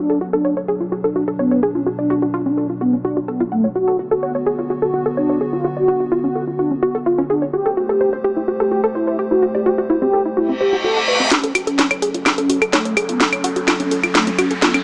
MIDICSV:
0, 0, Header, 1, 7, 480
1, 0, Start_track
1, 0, Key_signature, 3, "minor"
1, 0, Tempo, 472441
1, 1895, Time_signature, 4, 2, 24, 8
1, 15074, End_track
2, 0, Start_track
2, 0, Title_t, "Synth arpeggio sound"
2, 0, Program_c, 0, 84
2, 98, Note_on_c, 0, 69, 95
2, 145, Note_off_c, 0, 69, 0
2, 215, Note_on_c, 0, 66, 74
2, 290, Note_off_c, 0, 66, 0
2, 338, Note_on_c, 0, 69, 102
2, 367, Note_off_c, 0, 69, 0
2, 454, Note_on_c, 0, 73, 81
2, 505, Note_off_c, 0, 73, 0
2, 578, Note_on_c, 0, 73, 76
2, 625, Note_off_c, 0, 73, 0
2, 694, Note_on_c, 0, 68, 99
2, 770, Note_off_c, 0, 68, 0
2, 818, Note_on_c, 0, 65, 75
2, 865, Note_off_c, 0, 65, 0
2, 935, Note_on_c, 0, 66, 75
2, 965, Note_off_c, 0, 66, 0
2, 1058, Note_on_c, 0, 69, 96
2, 1105, Note_off_c, 0, 69, 0
2, 1175, Note_on_c, 0, 66, 75
2, 1250, Note_off_c, 0, 66, 0
2, 1298, Note_on_c, 0, 69, 96
2, 1327, Note_off_c, 0, 69, 0
2, 1415, Note_on_c, 0, 73, 77
2, 1465, Note_off_c, 0, 73, 0
2, 1538, Note_on_c, 0, 73, 72
2, 1586, Note_off_c, 0, 73, 0
2, 1655, Note_on_c, 0, 68, 99
2, 1730, Note_off_c, 0, 68, 0
2, 1779, Note_on_c, 0, 65, 71
2, 1826, Note_off_c, 0, 65, 0
2, 1895, Note_on_c, 0, 66, 79
2, 1925, Note_off_c, 0, 66, 0
2, 2019, Note_on_c, 0, 74, 72
2, 2089, Note_off_c, 0, 74, 0
2, 2136, Note_on_c, 0, 66, 95
2, 2185, Note_off_c, 0, 66, 0
2, 2259, Note_on_c, 0, 66, 76
2, 2287, Note_off_c, 0, 66, 0
2, 2375, Note_on_c, 0, 65, 99
2, 2450, Note_off_c, 0, 65, 0
2, 2499, Note_on_c, 0, 61, 73
2, 2546, Note_off_c, 0, 61, 0
2, 2615, Note_on_c, 0, 69, 72
2, 2690, Note_off_c, 0, 69, 0
2, 2739, Note_on_c, 0, 65, 74
2, 2786, Note_off_c, 0, 65, 0
2, 2855, Note_on_c, 0, 66, 74
2, 2885, Note_off_c, 0, 66, 0
2, 2979, Note_on_c, 0, 61, 72
2, 3026, Note_off_c, 0, 61, 0
2, 3095, Note_on_c, 0, 66, 91
2, 3170, Note_off_c, 0, 66, 0
2, 3219, Note_on_c, 0, 66, 74
2, 3247, Note_off_c, 0, 66, 0
2, 3335, Note_on_c, 0, 69, 89
2, 3365, Note_off_c, 0, 69, 0
2, 3459, Note_on_c, 0, 65, 98
2, 3487, Note_off_c, 0, 65, 0
2, 3575, Note_on_c, 0, 78, 71
2, 3605, Note_off_c, 0, 78, 0
2, 3699, Note_on_c, 0, 73, 70
2, 3746, Note_off_c, 0, 73, 0
2, 3815, Note_on_c, 0, 66, 81
2, 3845, Note_off_c, 0, 66, 0
2, 3939, Note_on_c, 0, 69, 96
2, 3986, Note_off_c, 0, 69, 0
2, 4055, Note_on_c, 0, 66, 73
2, 4130, Note_off_c, 0, 66, 0
2, 4179, Note_on_c, 0, 69, 98
2, 4207, Note_off_c, 0, 69, 0
2, 4296, Note_on_c, 0, 73, 82
2, 4345, Note_off_c, 0, 73, 0
2, 4419, Note_on_c, 0, 73, 73
2, 4466, Note_off_c, 0, 73, 0
2, 4536, Note_on_c, 0, 68, 95
2, 4610, Note_off_c, 0, 68, 0
2, 4659, Note_on_c, 0, 65, 73
2, 4706, Note_off_c, 0, 65, 0
2, 4776, Note_on_c, 0, 66, 76
2, 4805, Note_off_c, 0, 66, 0
2, 4899, Note_on_c, 0, 69, 94
2, 4946, Note_off_c, 0, 69, 0
2, 5016, Note_on_c, 0, 66, 71
2, 5090, Note_off_c, 0, 66, 0
2, 5139, Note_on_c, 0, 69, 100
2, 5167, Note_off_c, 0, 69, 0
2, 5256, Note_on_c, 0, 73, 77
2, 5305, Note_off_c, 0, 73, 0
2, 5379, Note_on_c, 0, 73, 73
2, 5426, Note_off_c, 0, 73, 0
2, 5495, Note_on_c, 0, 68, 91
2, 5570, Note_off_c, 0, 68, 0
2, 5619, Note_on_c, 0, 65, 76
2, 5666, Note_off_c, 0, 65, 0
2, 5736, Note_on_c, 0, 66, 82
2, 5765, Note_off_c, 0, 66, 0
2, 5859, Note_on_c, 0, 74, 73
2, 5929, Note_off_c, 0, 74, 0
2, 5976, Note_on_c, 0, 66, 98
2, 6025, Note_off_c, 0, 66, 0
2, 6099, Note_on_c, 0, 66, 80
2, 6127, Note_off_c, 0, 66, 0
2, 6215, Note_on_c, 0, 65, 97
2, 6290, Note_off_c, 0, 65, 0
2, 6339, Note_on_c, 0, 61, 72
2, 6386, Note_off_c, 0, 61, 0
2, 6455, Note_on_c, 0, 69, 73
2, 6530, Note_off_c, 0, 69, 0
2, 6578, Note_on_c, 0, 65, 73
2, 6626, Note_off_c, 0, 65, 0
2, 6695, Note_on_c, 0, 66, 75
2, 6725, Note_off_c, 0, 66, 0
2, 6819, Note_on_c, 0, 61, 73
2, 6866, Note_off_c, 0, 61, 0
2, 6935, Note_on_c, 0, 66, 94
2, 7010, Note_off_c, 0, 66, 0
2, 7059, Note_on_c, 0, 69, 78
2, 7106, Note_off_c, 0, 69, 0
2, 7175, Note_on_c, 0, 65, 91
2, 7250, Note_off_c, 0, 65, 0
2, 7299, Note_on_c, 0, 61, 97
2, 7369, Note_off_c, 0, 61, 0
2, 7415, Note_on_c, 0, 68, 96
2, 7465, Note_off_c, 0, 68, 0
2, 7539, Note_on_c, 0, 73, 76
2, 7586, Note_off_c, 0, 73, 0
2, 7655, Note_on_c, 0, 66, 77
2, 7685, Note_off_c, 0, 66, 0
2, 7779, Note_on_c, 0, 69, 100
2, 7826, Note_off_c, 0, 69, 0
2, 7896, Note_on_c, 0, 66, 71
2, 7970, Note_off_c, 0, 66, 0
2, 8019, Note_on_c, 0, 69, 100
2, 8047, Note_off_c, 0, 69, 0
2, 8135, Note_on_c, 0, 72, 83
2, 8185, Note_off_c, 0, 72, 0
2, 8259, Note_on_c, 0, 72, 77
2, 8306, Note_off_c, 0, 72, 0
2, 8375, Note_on_c, 0, 67, 99
2, 8450, Note_off_c, 0, 67, 0
2, 8499, Note_on_c, 0, 64, 77
2, 8546, Note_off_c, 0, 64, 0
2, 8616, Note_on_c, 0, 66, 76
2, 8645, Note_off_c, 0, 66, 0
2, 8739, Note_on_c, 0, 69, 99
2, 8786, Note_off_c, 0, 69, 0
2, 8855, Note_on_c, 0, 66, 73
2, 8930, Note_off_c, 0, 66, 0
2, 8978, Note_on_c, 0, 69, 105
2, 9007, Note_off_c, 0, 69, 0
2, 9095, Note_on_c, 0, 72, 77
2, 9145, Note_off_c, 0, 72, 0
2, 9219, Note_on_c, 0, 72, 73
2, 9266, Note_off_c, 0, 72, 0
2, 9336, Note_on_c, 0, 67, 97
2, 9410, Note_off_c, 0, 67, 0
2, 9459, Note_on_c, 0, 64, 71
2, 9506, Note_off_c, 0, 64, 0
2, 9576, Note_on_c, 0, 66, 79
2, 9605, Note_off_c, 0, 66, 0
2, 9699, Note_on_c, 0, 74, 75
2, 9769, Note_off_c, 0, 74, 0
2, 9816, Note_on_c, 0, 66, 94
2, 9865, Note_off_c, 0, 66, 0
2, 9939, Note_on_c, 0, 66, 78
2, 9967, Note_off_c, 0, 66, 0
2, 10055, Note_on_c, 0, 64, 97
2, 10130, Note_off_c, 0, 64, 0
2, 10179, Note_on_c, 0, 60, 78
2, 10226, Note_off_c, 0, 60, 0
2, 10296, Note_on_c, 0, 69, 74
2, 10370, Note_off_c, 0, 69, 0
2, 10419, Note_on_c, 0, 64, 76
2, 10466, Note_off_c, 0, 64, 0
2, 10535, Note_on_c, 0, 66, 76
2, 10565, Note_off_c, 0, 66, 0
2, 10659, Note_on_c, 0, 60, 74
2, 10706, Note_off_c, 0, 60, 0
2, 10775, Note_on_c, 0, 72, 72
2, 10850, Note_off_c, 0, 72, 0
2, 10899, Note_on_c, 0, 66, 74
2, 10946, Note_off_c, 0, 66, 0
2, 11015, Note_on_c, 0, 66, 80
2, 11090, Note_off_c, 0, 66, 0
2, 11139, Note_on_c, 0, 78, 72
2, 11186, Note_off_c, 0, 78, 0
2, 11255, Note_on_c, 0, 74, 72
2, 11330, Note_off_c, 0, 74, 0
2, 11379, Note_on_c, 0, 60, 73
2, 11449, Note_off_c, 0, 60, 0
2, 11495, Note_on_c, 0, 66, 84
2, 11525, Note_off_c, 0, 66, 0
2, 11618, Note_on_c, 0, 69, 96
2, 11665, Note_off_c, 0, 69, 0
2, 11735, Note_on_c, 0, 66, 74
2, 11810, Note_off_c, 0, 66, 0
2, 11858, Note_on_c, 0, 69, 100
2, 11886, Note_off_c, 0, 69, 0
2, 11975, Note_on_c, 0, 73, 81
2, 12025, Note_off_c, 0, 73, 0
2, 12098, Note_on_c, 0, 73, 75
2, 12146, Note_off_c, 0, 73, 0
2, 12214, Note_on_c, 0, 68, 101
2, 12290, Note_off_c, 0, 68, 0
2, 12338, Note_on_c, 0, 65, 76
2, 12385, Note_off_c, 0, 65, 0
2, 12455, Note_on_c, 0, 66, 77
2, 12485, Note_off_c, 0, 66, 0
2, 12578, Note_on_c, 0, 69, 100
2, 12626, Note_off_c, 0, 69, 0
2, 12695, Note_on_c, 0, 66, 77
2, 12770, Note_off_c, 0, 66, 0
2, 12818, Note_on_c, 0, 69, 101
2, 12847, Note_off_c, 0, 69, 0
2, 12935, Note_on_c, 0, 73, 78
2, 12985, Note_off_c, 0, 73, 0
2, 13058, Note_on_c, 0, 73, 72
2, 13105, Note_off_c, 0, 73, 0
2, 13175, Note_on_c, 0, 68, 102
2, 13250, Note_off_c, 0, 68, 0
2, 13299, Note_on_c, 0, 65, 76
2, 13346, Note_off_c, 0, 65, 0
2, 13416, Note_on_c, 0, 66, 84
2, 13445, Note_off_c, 0, 66, 0
2, 13539, Note_on_c, 0, 73, 74
2, 13609, Note_off_c, 0, 73, 0
2, 13655, Note_on_c, 0, 66, 98
2, 13705, Note_off_c, 0, 66, 0
2, 13779, Note_on_c, 0, 66, 77
2, 13807, Note_off_c, 0, 66, 0
2, 13895, Note_on_c, 0, 65, 96
2, 13970, Note_off_c, 0, 65, 0
2, 14019, Note_on_c, 0, 61, 76
2, 14066, Note_off_c, 0, 61, 0
2, 14135, Note_on_c, 0, 69, 76
2, 14210, Note_off_c, 0, 69, 0
2, 14259, Note_on_c, 0, 65, 75
2, 14306, Note_off_c, 0, 65, 0
2, 14376, Note_on_c, 0, 66, 77
2, 14405, Note_off_c, 0, 66, 0
2, 14499, Note_on_c, 0, 61, 73
2, 14546, Note_off_c, 0, 61, 0
2, 14615, Note_on_c, 0, 66, 99
2, 14690, Note_off_c, 0, 66, 0
2, 14739, Note_on_c, 0, 69, 76
2, 14786, Note_off_c, 0, 69, 0
2, 14856, Note_on_c, 0, 65, 96
2, 14930, Note_off_c, 0, 65, 0
2, 14979, Note_on_c, 0, 61, 96
2, 15049, Note_off_c, 0, 61, 0
2, 15074, End_track
3, 0, Start_track
3, 0, Title_t, "Analog synth lead"
3, 0, Program_c, 1, 81
3, 0, Note_on_c, 1, 62, 98
3, 189, Note_off_c, 1, 62, 0
3, 338, Note_on_c, 1, 62, 90
3, 551, Note_off_c, 1, 62, 0
3, 1058, Note_on_c, 1, 62, 91
3, 1271, Note_off_c, 1, 62, 0
3, 1415, Note_on_c, 1, 59, 89
3, 1629, Note_off_c, 1, 59, 0
3, 1779, Note_on_c, 1, 61, 87
3, 1918, Note_off_c, 1, 61, 0
3, 2019, Note_on_c, 1, 62, 88
3, 2302, Note_off_c, 1, 62, 0
3, 2500, Note_on_c, 1, 62, 90
3, 2712, Note_off_c, 1, 62, 0
3, 2856, Note_on_c, 1, 59, 88
3, 3001, Note_off_c, 1, 59, 0
3, 3095, Note_on_c, 1, 62, 79
3, 3241, Note_off_c, 1, 62, 0
3, 3336, Note_on_c, 1, 59, 82
3, 3481, Note_off_c, 1, 59, 0
3, 3576, Note_on_c, 1, 57, 84
3, 3721, Note_off_c, 1, 57, 0
3, 3815, Note_on_c, 1, 66, 92
3, 4030, Note_off_c, 1, 66, 0
3, 4179, Note_on_c, 1, 66, 89
3, 4391, Note_off_c, 1, 66, 0
3, 4900, Note_on_c, 1, 66, 89
3, 5112, Note_off_c, 1, 66, 0
3, 5256, Note_on_c, 1, 62, 90
3, 5470, Note_off_c, 1, 62, 0
3, 5619, Note_on_c, 1, 65, 86
3, 5758, Note_off_c, 1, 65, 0
3, 5859, Note_on_c, 1, 66, 96
3, 6142, Note_off_c, 1, 66, 0
3, 6338, Note_on_c, 1, 66, 92
3, 6551, Note_off_c, 1, 66, 0
3, 6695, Note_on_c, 1, 62, 85
3, 6841, Note_off_c, 1, 62, 0
3, 6936, Note_on_c, 1, 66, 80
3, 7081, Note_off_c, 1, 66, 0
3, 7174, Note_on_c, 1, 65, 85
3, 7320, Note_off_c, 1, 65, 0
3, 7415, Note_on_c, 1, 62, 84
3, 7560, Note_off_c, 1, 62, 0
3, 7654, Note_on_c, 1, 67, 99
3, 7869, Note_off_c, 1, 67, 0
3, 8017, Note_on_c, 1, 67, 87
3, 8231, Note_off_c, 1, 67, 0
3, 8738, Note_on_c, 1, 67, 91
3, 8951, Note_off_c, 1, 67, 0
3, 9095, Note_on_c, 1, 64, 87
3, 9309, Note_off_c, 1, 64, 0
3, 9458, Note_on_c, 1, 66, 89
3, 9598, Note_off_c, 1, 66, 0
3, 9698, Note_on_c, 1, 67, 90
3, 9982, Note_off_c, 1, 67, 0
3, 10178, Note_on_c, 1, 67, 94
3, 10391, Note_off_c, 1, 67, 0
3, 10534, Note_on_c, 1, 64, 87
3, 10680, Note_off_c, 1, 64, 0
3, 10773, Note_on_c, 1, 67, 85
3, 10919, Note_off_c, 1, 67, 0
3, 11014, Note_on_c, 1, 69, 89
3, 11160, Note_off_c, 1, 69, 0
3, 11253, Note_on_c, 1, 71, 83
3, 11399, Note_off_c, 1, 71, 0
3, 11493, Note_on_c, 1, 61, 98
3, 11708, Note_off_c, 1, 61, 0
3, 11858, Note_on_c, 1, 61, 91
3, 12071, Note_off_c, 1, 61, 0
3, 12577, Note_on_c, 1, 61, 93
3, 12791, Note_off_c, 1, 61, 0
3, 12935, Note_on_c, 1, 57, 90
3, 13149, Note_off_c, 1, 57, 0
3, 13299, Note_on_c, 1, 59, 87
3, 13438, Note_off_c, 1, 59, 0
3, 13539, Note_on_c, 1, 61, 95
3, 13822, Note_off_c, 1, 61, 0
3, 14020, Note_on_c, 1, 61, 92
3, 14232, Note_off_c, 1, 61, 0
3, 14375, Note_on_c, 1, 57, 85
3, 14520, Note_off_c, 1, 57, 0
3, 14616, Note_on_c, 1, 61, 85
3, 14761, Note_off_c, 1, 61, 0
3, 14856, Note_on_c, 1, 59, 86
3, 15001, Note_off_c, 1, 59, 0
3, 15074, End_track
4, 0, Start_track
4, 0, Title_t, "Analog synth pad"
4, 0, Program_c, 2, 89
4, 0, Note_on_c, 2, 47, 82
4, 0, Note_on_c, 2, 54, 77
4, 0, Note_on_c, 2, 62, 91
4, 3774, Note_off_c, 2, 54, 0
4, 3776, Note_off_c, 2, 47, 0
4, 3776, Note_off_c, 2, 62, 0
4, 3815, Note_on_c, 2, 50, 81
4, 3815, Note_on_c, 2, 59, 74
4, 3815, Note_on_c, 2, 66, 86
4, 7617, Note_off_c, 2, 50, 0
4, 7617, Note_off_c, 2, 59, 0
4, 7617, Note_off_c, 2, 66, 0
4, 7655, Note_on_c, 2, 57, 82
4, 7655, Note_on_c, 2, 67, 70
4, 7655, Note_on_c, 2, 72, 87
4, 11457, Note_off_c, 2, 57, 0
4, 11457, Note_off_c, 2, 67, 0
4, 11457, Note_off_c, 2, 72, 0
4, 11494, Note_on_c, 2, 54, 81
4, 11494, Note_on_c, 2, 61, 75
4, 11494, Note_on_c, 2, 69, 91
4, 15074, Note_off_c, 2, 54, 0
4, 15074, Note_off_c, 2, 61, 0
4, 15074, Note_off_c, 2, 69, 0
4, 15074, End_track
5, 0, Start_track
5, 0, Title_t, "Reverse cymbal"
5, 0, Program_c, 3, 119
5, 10535, Note_on_c, 3, 60, 70
5, 11495, Note_off_c, 3, 60, 0
5, 15074, End_track
6, 0, Start_track
6, 0, Title_t, "Riser"
6, 0, Program_c, 4, 103
6, 11495, Note_on_c, 4, 60, 75
6, 15074, Note_off_c, 4, 60, 0
6, 15074, End_track
7, 0, Start_track
7, 0, Title_t, "Drums"
7, 11496, Note_on_c, 9, 38, 47
7, 11496, Note_on_c, 9, 42, 82
7, 11597, Note_off_c, 9, 38, 0
7, 11597, Note_off_c, 9, 42, 0
7, 11619, Note_on_c, 9, 42, 44
7, 11721, Note_off_c, 9, 42, 0
7, 11736, Note_on_c, 9, 46, 97
7, 11736, Note_on_c, 9, 75, 51
7, 11837, Note_off_c, 9, 46, 0
7, 11837, Note_off_c, 9, 75, 0
7, 11859, Note_on_c, 9, 42, 45
7, 11961, Note_off_c, 9, 42, 0
7, 11975, Note_on_c, 9, 38, 48
7, 11975, Note_on_c, 9, 42, 80
7, 12077, Note_off_c, 9, 38, 0
7, 12077, Note_off_c, 9, 42, 0
7, 12099, Note_on_c, 9, 42, 45
7, 12099, Note_on_c, 9, 75, 50
7, 12200, Note_off_c, 9, 42, 0
7, 12200, Note_off_c, 9, 75, 0
7, 12216, Note_on_c, 9, 46, 99
7, 12317, Note_off_c, 9, 46, 0
7, 12339, Note_on_c, 9, 42, 44
7, 12441, Note_off_c, 9, 42, 0
7, 12455, Note_on_c, 9, 38, 46
7, 12455, Note_on_c, 9, 42, 75
7, 12455, Note_on_c, 9, 75, 51
7, 12557, Note_off_c, 9, 38, 0
7, 12557, Note_off_c, 9, 42, 0
7, 12557, Note_off_c, 9, 75, 0
7, 12579, Note_on_c, 9, 42, 44
7, 12680, Note_off_c, 9, 42, 0
7, 12696, Note_on_c, 9, 46, 95
7, 12797, Note_off_c, 9, 46, 0
7, 12819, Note_on_c, 9, 42, 45
7, 12819, Note_on_c, 9, 75, 50
7, 12921, Note_off_c, 9, 42, 0
7, 12921, Note_off_c, 9, 75, 0
7, 12936, Note_on_c, 9, 38, 47
7, 12936, Note_on_c, 9, 42, 76
7, 13037, Note_off_c, 9, 38, 0
7, 13037, Note_off_c, 9, 42, 0
7, 13059, Note_on_c, 9, 42, 44
7, 13161, Note_off_c, 9, 42, 0
7, 13176, Note_on_c, 9, 46, 99
7, 13176, Note_on_c, 9, 75, 48
7, 13277, Note_off_c, 9, 46, 0
7, 13277, Note_off_c, 9, 75, 0
7, 13299, Note_on_c, 9, 42, 44
7, 13401, Note_off_c, 9, 42, 0
7, 13416, Note_on_c, 9, 38, 53
7, 13416, Note_on_c, 9, 42, 79
7, 13518, Note_off_c, 9, 38, 0
7, 13518, Note_off_c, 9, 42, 0
7, 13539, Note_on_c, 9, 42, 45
7, 13539, Note_on_c, 9, 75, 50
7, 13641, Note_off_c, 9, 42, 0
7, 13641, Note_off_c, 9, 75, 0
7, 13656, Note_on_c, 9, 46, 103
7, 13757, Note_off_c, 9, 46, 0
7, 13779, Note_on_c, 9, 42, 46
7, 13880, Note_off_c, 9, 42, 0
7, 13896, Note_on_c, 9, 38, 52
7, 13896, Note_on_c, 9, 42, 79
7, 13896, Note_on_c, 9, 75, 51
7, 13998, Note_off_c, 9, 38, 0
7, 13998, Note_off_c, 9, 42, 0
7, 13998, Note_off_c, 9, 75, 0
7, 14019, Note_on_c, 9, 42, 45
7, 14121, Note_off_c, 9, 42, 0
7, 14136, Note_on_c, 9, 46, 100
7, 14238, Note_off_c, 9, 46, 0
7, 14260, Note_on_c, 9, 42, 45
7, 14260, Note_on_c, 9, 75, 49
7, 14361, Note_off_c, 9, 42, 0
7, 14361, Note_off_c, 9, 75, 0
7, 14375, Note_on_c, 9, 38, 54
7, 14375, Note_on_c, 9, 42, 79
7, 14477, Note_off_c, 9, 38, 0
7, 14477, Note_off_c, 9, 42, 0
7, 14499, Note_on_c, 9, 42, 42
7, 14601, Note_off_c, 9, 42, 0
7, 14616, Note_on_c, 9, 46, 102
7, 14616, Note_on_c, 9, 75, 45
7, 14717, Note_off_c, 9, 46, 0
7, 14717, Note_off_c, 9, 75, 0
7, 14739, Note_on_c, 9, 42, 44
7, 14841, Note_off_c, 9, 42, 0
7, 14856, Note_on_c, 9, 38, 51
7, 14856, Note_on_c, 9, 42, 75
7, 14957, Note_off_c, 9, 38, 0
7, 14957, Note_off_c, 9, 42, 0
7, 14979, Note_on_c, 9, 42, 45
7, 14979, Note_on_c, 9, 75, 48
7, 15074, Note_off_c, 9, 42, 0
7, 15074, Note_off_c, 9, 75, 0
7, 15074, End_track
0, 0, End_of_file